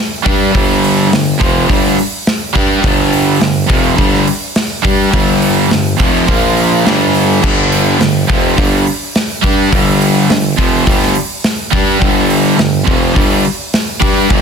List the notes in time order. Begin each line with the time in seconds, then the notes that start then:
0.26 G2 G3 D4 G4, kick, open hi-hat
0.54 G1 G2 D3 G3, kick, open hi-hat
0.84 open hi-hat
1.11 G1 G2 D3, snare, open hi-hat
1.40 F1 F2 C3 F3, kick, open hi-hat
1.69 G1 G2 D3 G3, kick, open hi-hat
1.85 snare
1.99 open hi-hat
2.27 snare, open hi-hat
2.55 G2 G3 D4 G4, kick
2.84 G1 G2 D3 G3, kick, open hi-hat
3.13 open hi-hat
3.40 G1 G2 D3, snare, open hi-hat
3.69 F1 F2 C3 F3, kick, open hi-hat
3.98 G1 G2 D3 G3, kick, open hi-hat
4.14 snare
4.27 open hi-hat
4.56 snare, open hi-hat
4.85 G2 G3 D4 G4, kick
5.12 G1 G2 D3 G3, kick, open hi-hat
5.42 open hi-hat
5.71 G1 G2 D3, snare, open hi-hat
6.00 F1 F2 C3 F3, kick, open hi-hat
6.28 A#1 A#2 F3 A#3, kick, open hi-hat
6.57 open hi-hat
6.86 G1 G2 D3 G3, snare, open hi-hat
7.14 open hi-hat
7.42 G1 G2 D3 G3, kick, crash
7.72 open hi-hat
8.00 G1 G2 D3, snare, open hi-hat
8.29 F1 F2 C3 F3, kick
8.57 G1 G2 D3 G3, kick, open hi-hat
8.87 open hi-hat
9.15 snare, open hi-hat
9.43 G2 G3 D4 G4, kick, open hi-hat
9.72 G1 G2 D3 G3, kick, open hi-hat
10.01 open hi-hat
10.29 G1 G2 D3, snare, open hi-hat
10.58 F1 F2 C3 F3, kick, open hi-hat
10.86 G1 G2 D3 G3, kick, open hi-hat
11.02 snare
11.15 open hi-hat
11.44 snare, open hi-hat
11.72 G2 G3 D4 G4, kick, open hi-hat
12.01 G1 G2 D3 G3, kick, open hi-hat
12.30 open hi-hat
12.58 G1 G2 D3, snare, open hi-hat
12.86 F1 F2 C3 F3, kick
13.14 G1 G2 D3 G3, kick, open hi-hat
13.45 open hi-hat
13.73 snare, open hi-hat
14.00 G2 G3 D4 G4, kick, open hi-hat
14.30 G1 G2 D3 G3, kick, open hi-hat